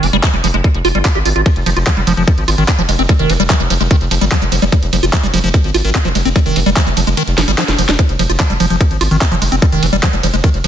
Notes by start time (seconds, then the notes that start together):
0.03 F1 F3, open hi-hat
0.13 F1 G3, closed hi-hat
0.23 F3, kick, clap, closed hi-hat
0.34 F1 G3, closed hi-hat
0.44 F1 F3, open hi-hat
0.54 F1 G#3, closed hi-hat
0.64 G3, kick, closed hi-hat
0.74 F1, closed hi-hat
0.85 F1 F4, open hi-hat
0.95 G1 G3, closed hi-hat
1.05 G4, kick, clap, closed hi-hat
1.15 G#1 G4, closed hi-hat
1.25 G#1 F4, open hi-hat
1.36 G#1 F4, closed hi-hat
1.46 F3, kick, closed hi-hat, ride
1.56 F1, closed hi-hat
1.66 F1 F3, open hi-hat, ride
1.76 F1 F4, closed hi-hat
1.87 F3, kick, clap, closed hi-hat, ride
1.97 F1 G3, closed hi-hat
2.07 F1 F3, open hi-hat, ride
2.17 F1 F3, closed hi-hat
2.27 F3, kick, closed hi-hat, ride
2.38 G#1, closed hi-hat
2.48 G#1 F4, open hi-hat, ride
2.58 G#1 D#3, closed hi-hat
2.68 C4, kick, clap, closed hi-hat, ride
2.79 F1 F3, closed hi-hat
2.89 F1 G#3, open hi-hat, ride
2.99 F1 C4, closed hi-hat
3.09 G3, kick, closed hi-hat, ride
3.19 F1 D#3, closed hi-hat
3.30 F1 F3, open hi-hat, ride
3.40 F1 G3, closed hi-hat
3.50 F3, kick, clap, closed hi-hat, ride
3.60 F1 G3, closed hi-hat
3.70 F1 F3, open hi-hat, ride
3.81 F1 G#3, closed hi-hat
3.91 D#3, kick, closed hi-hat, ride
4.01 F1, closed hi-hat
4.11 F1 F3, open hi-hat, ride
4.21 G1 G3, closed hi-hat
4.32 F3, kick, clap, closed hi-hat
4.42 F1 G3, closed hi-hat
4.52 F1 F3, open hi-hat, ride
4.62 F1 G3, closed hi-hat
4.72 F3, kick, closed hi-hat, ride
4.83 F1, closed hi-hat
4.93 F1 F3, open hi-hat, ride
5.03 F1 F4, closed hi-hat
5.13 F3, kick, clap, closed hi-hat, ride
5.23 F1 G3, closed hi-hat
5.34 F1 F3, open hi-hat, ride
5.44 F1 F3, closed hi-hat
5.54 F3, kick, closed hi-hat, ride
5.64 G#1, closed hi-hat
5.74 G#1 F4, open hi-hat, ride
5.85 G#1 D#3, closed hi-hat
5.95 C4, kick, clap, closed hi-hat, ride
6.05 F1 F3, closed hi-hat
6.15 F1 G#3, open hi-hat, ride
6.25 F1 C4, closed hi-hat
6.36 G3, kick, closed hi-hat, ride
6.46 F1 D#3, closed hi-hat
6.56 F1 F3, open hi-hat, ride
6.66 F1 G3, closed hi-hat
6.76 F3, kick, clap, closed hi-hat, ride
6.87 F1 G3, closed hi-hat
6.97 F1 F3, open hi-hat, ride
7.07 F1 G#3, closed hi-hat
7.17 D#3, closed hi-hat, ride
7.28 F1, closed hi-hat
7.38 F1 F3, snare, open hi-hat, ride
7.48 G1 G3, closed hi-hat
7.58 F3, snare, clap, closed hi-hat, ride
7.68 F1 G3, snare, closed hi-hat
7.78 F1 F3, open hi-hat, ride
7.89 F1 G3, snare, closed hi-hat
7.99 F3, kick, closed hi-hat, ride
8.09 F1, closed hi-hat
8.19 F1 F3, open hi-hat, ride
8.29 F1 F4, closed hi-hat
8.40 F3, kick, clap, closed hi-hat, ride
8.50 F1 G3, closed hi-hat
8.60 F1 F3, open hi-hat, ride
8.70 F1 F3, closed hi-hat
8.80 F3, kick, closed hi-hat, ride
8.91 G#1, closed hi-hat
9.01 G#1 F4, open hi-hat, ride
9.11 G#1 D#3, closed hi-hat
9.21 C4, kick, clap, closed hi-hat, ride
9.32 F1 F3, closed hi-hat
9.42 F1 G#3, open hi-hat, ride
9.52 F1 C4, closed hi-hat
9.62 G3, kick, closed hi-hat, ride
9.72 F1 D#3, closed hi-hat
9.83 F1 F3, open hi-hat, ride
9.93 F1 G3, closed hi-hat
10.03 F3, kick, clap, closed hi-hat
10.13 F1 G3, closed hi-hat
10.23 F1 F3, open hi-hat, ride
10.34 F1 G#3, closed hi-hat
10.44 D#3, kick, closed hi-hat, ride
10.54 F1, closed hi-hat
10.64 F1 F3, open hi-hat, ride